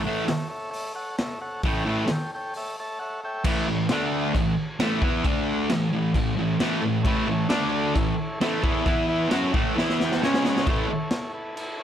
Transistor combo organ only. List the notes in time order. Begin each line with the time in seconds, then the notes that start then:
0.04 A4 C#5 F#5
0.27 A4 C#5 E5
0.49 A4 C#5 E5
0.71 A4 C#5 E5
0.95 A4 C#5 F#5
1.18 A4 C#5 E5
1.41 A4 C#5 F#5
1.68 A4 C#5 G5
1.89 A4 C#5 E5
2.12 A4 C#5 G5
2.35 A4 C#5 G5
2.56 A4 C#5 E5
2.80 A4 C#5 E5 A5
2.99 A4 C#5 E5 F#5
3.24 A4 C#5 E5 G5
7.03 A4 C#5 E5
7.27 A4 C#5 E5
7.49 D4 A4 D5
7.72 D4 A4 D5
7.95 E4 A4 C#5
8.18 E4 A4 C#5
8.41 E4 A4 B4
8.62 E4 A4 C#5
8.85 E4 B4 E5
9.08 E4 B4 E5
9.33 E4 A4 C#5
9.55 E4 A4 C#5
9.78 E4 B4 E5
10.04 E4 B4 G5 A5
10.24 C#4 G#4 C#5 G#5
10.49 C#4 G#4 C#5 F#5
10.68 E4 A4 C#5
10.91 E4 A4 C#5
11.11 E4 A4 C#5
11.33 E4 A4 B4
11.56 E4 A4 B4
11.78 E4 A4 C#5